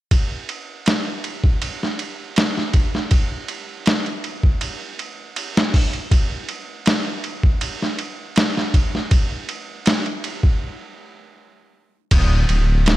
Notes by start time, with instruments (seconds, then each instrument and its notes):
0.11 kick, ride
0.49 ride
0.86 snare, ride
1.24 ride
1.44 kick
1.62 ride
1.83 snare
1.99 ride
2.36 snare, ride
2.57 snare
2.73 kick, ride
2.95 snare
3.11 kick, ride
3.48 ride
3.86 snare, ride
4.06 ride
4.24 ride
4.43 kick
4.61 ride
4.99 ride
5.36 ride
5.57 snare
5.74 kick, open hi-hat
5.93 ride
6.11 kick, ride
6.49 ride
6.86 snare, ride
7.24 ride
7.43 kick
7.61 ride
7.82 snare
7.99 ride
8.36 snare, ride
8.57 snare
8.74 kick, ride
8.95 snare
9.11 kick, ride
9.49 ride
9.86 snare, ride
10.06 ride
10.24 ride
10.43 kick
12.11 detuned saw bass D1, kick, crash, ride
12.49 detuned saw bass D1, ride
12.86 snare, ride